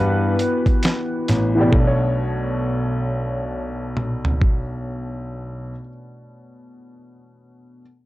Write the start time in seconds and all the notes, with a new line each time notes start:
Already playing: G2 E3 B3 F#4 G4 B4
0.39 closed hi-hat
0.66 kick, closed hi-hat
0.83 snare, closed hi-hat
1.28 A1, snare, closed hi-hat
1.55 E3 B3
1.59 B2 G4 D5
1.70 B1 A3, kick
1.79 D4
1.87 C#5
3.97 mid tom
4.25 floor tom
4.41 kick